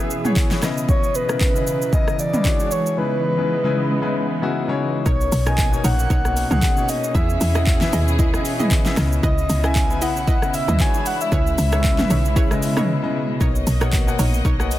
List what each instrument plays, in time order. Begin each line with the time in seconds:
Already playing: string section B2 E3 C#4 G#4, grand piano E3 B3 G#4 E5 F#5, soft synth lead E5
0.10 shaker
0.25 grand piano E3 B3 G#4 C#5, mid tom, shaker
0.36 kick, clap, shaker
0.51 grand piano E3 B3 G#4 C#5, snare, shaker
0.62 grand piano C#3 B3 E4 D#5, string section C#3 E3 D#5, cross-stick, snare, shaker
0.78 shaker
0.89 soft synth lead C#5, kick, shaker
1.03 shaker
1.15 soft synth lead B4, shaker
1.29 grand piano C#3 B3 E4 A#4, cross-stick, shaker
1.41 kick, clap, shaker
1.55 grand piano C#3 B3 E4 D#5, shaker
1.67 shaker
1.82 shaker
1.93 grand piano C#3 B3 E4 D#5, soft synth lead D#5, kick, shaker
2.08 cross-stick, shaker
2.19 soft synth lead D5, shaker
2.33 grand piano C#3 B3 E4 D#5, mid tom, shaker
2.45 grand piano E3 D4 F#4 G#4 C#5, string section G#3 D4, kick, clap, shaker
2.59 grand piano E3 D4 F#4 G#4 C#5, shaker
2.71 soft synth lead C#5, shaker
2.86 shaker
2.97 grand piano C#3 G#3 D#4 E4 B4, string section C#3 B3 D#5, soft synth lead B4
3.38 grand piano C#3 G#3 D#4 E4 B4
3.64 grand piano C#3 G#3 D#4 E4 B4
4.01 grand piano C#3 G#3 D#4 E4 B4
4.42 grand piano C#3 G#3 D#4 E4 F#4
4.68 grand piano C#3 G#3 D#4 E4 C#5
5.06 log drum bass B1, grand piano B2 A#3 D#4 C#5, string section B2 A#3 C#4, synth pluck D#4 A#4 C#5, soft synth lead C#5, kick, shaker
5.21 shaker
5.32 log drum bass B1, open hi-hat, shaker
5.46 grand piano B2 A#3 D#4 D#5, synth pluck D#4 A#4 C#5, soft synth lead G#5, cross-stick, shaker
5.58 kick, clap, shaker
5.72 grand piano B2 A#3 D#4 C#5, shaker
5.84 log drum bass A#1, synth pluck D#4 A#4 C#5, soft synth lead F#5, open hi-hat, shaker
5.99 shaker
6.10 log drum bass B1, synth pluck D#4 A#4 C#5, kick, shaker
6.24 grand piano B2 A#3 D#4 C#5, cross-stick, shaker
6.37 open hi-hat, shaker
6.51 log drum bass C#2, grand piano B2 A#3 D#4 G#4, synth pluck D#4 A#4 C#5, soft synth lead F#5, mid tom, shaker
6.62 kick, clap, shaker
6.77 grand piano B2 A#3 D#4 C#5, shaker
6.89 soft synth lead D#5, open hi-hat, shaker
7.04 shaker
7.14 log drum bass E2, grand piano E3 B3 G#4 E5, synth pluck E4 G#4 E5, string section E4 G#4, soft synth lead E5, kick, shaker
7.29 shaker
7.41 log drum bass E2, open hi-hat, shaker
7.55 grand piano E3 B3 G#4 F#5, synth pluck E4 G#4 D#5, cross-stick, shaker
7.67 kick, clap, shaker
7.81 grand piano E3 B3 G#4 E5, snare, shaker
7.93 log drum bass D#2, synth pluck E4 G#4 D#5, open hi-hat, shaker
8.08 shaker
8.19 synth pluck E4 G#4 D#5, kick, shaker
8.33 grand piano E3 B3 G#4 D#5, cross-stick, shaker
8.45 open hi-hat, shaker
8.59 grand piano E3 B3 G#4 D#5, synth pluck E4 G#4 D#5, mid tom, shaker
8.71 kick, clap, shaker
8.85 grand piano E3 B3 G#4 E5, snare, shaker
8.97 log drum bass C#2, grand piano C#3 B3 E4 D#5, string section C#3 E4, cross-stick, snare, open hi-hat, shaker
9.12 shaker
9.23 log drum bass C#2, synth pluck E4 B4 D#5, soft synth lead D#5, kick, shaker
9.38 shaker
9.49 log drum bass C#2, open hi-hat, shaker
9.64 grand piano C#3 B3 E4 E5, synth pluck E4 B4 D#5, soft synth lead G#5, cross-stick, shaker
9.75 kick, clap, shaker
9.90 grand piano C#3 B3 E4 B4, shaker
10.01 log drum bass B1, synth pluck E4 B4 D#5, soft synth lead F#5, open hi-hat, shaker
10.17 shaker
10.27 log drum bass C#2, synth pluck E4 B4 D#5, kick, shaker
10.42 grand piano C#3 B3 E4 D#5, cross-stick, shaker
10.54 soft synth lead E5, open hi-hat, shaker
10.68 log drum bass D#2, grand piano C#3 B3 E4 D#5, synth pluck E4 B4 D#5, mid tom, shaker
10.79 grand piano E3 D4 F#4 G#4 C#5, string section G#3 D4, soft synth lead G#5, kick, clap, shaker
10.94 grand piano E3 D4 F#4 G#4 C#5, shaker
11.06 soft synth lead F#5, open hi-hat, shaker
11.21 soft synth lead E5, shaker
11.32 log drum bass C#2, string section B2 C#3 C#4, grand piano C#3 G#3 E4 B4 E5, synth pluck E4 G#4 B4 C#5, kick, shaker
11.47 shaker
11.58 log drum bass C#2, open hi-hat, shaker
11.72 grand piano C#3 G#3 E4 B4 C#5, synth pluck D#4 G#4 B4 C#5, cross-stick, shaker
11.84 kick, clap, shaker
11.98 grand piano C#3 G#3 E4 B4 E5, snare, mid tom, shaker
12.10 log drum bass B1, synth pluck D#4 G#4 B4 C#5, open hi-hat, shaker
12.25 shaker
12.36 synth pluck E4 G#4 B4 C#5, kick, shaker
12.50 grand piano C#3 G#3 E4 B4 D#5, cross-stick, shaker
12.63 open hi-hat, shaker
12.76 grand piano C#3 G#3 E4 B4 D#5, synth pluck D#4 G#4 B4 C#5, cross-stick, mid tom, shaker
13.03 grand piano C#3 G#3 E4 B4 D#5
13.40 log drum bass B1, grand piano B2 A#3 C#5 D#5, string section A#3 D#5, synth pluck D#4 A#4 C#5, kick, shaker
13.55 shaker
13.67 log drum bass B1, open hi-hat, shaker
13.81 grand piano B2 A#3 C#5 F#5, synth pluck D#4 A#4 C#5, cross-stick, shaker
13.93 kick, clap, shaker
14.07 grand piano B2 A#3 C#5 F#5, shaker
14.19 log drum bass A#1, synth pluck D#4 A#4 C#5, open hi-hat, shaker
14.34 shaker
14.45 log drum bass B1, synth pluck D#4 A#4 C#5, kick, shaker
14.59 grand piano B2 A#3 C#5 F#5, cross-stick, shaker
14.71 open hi-hat, shaker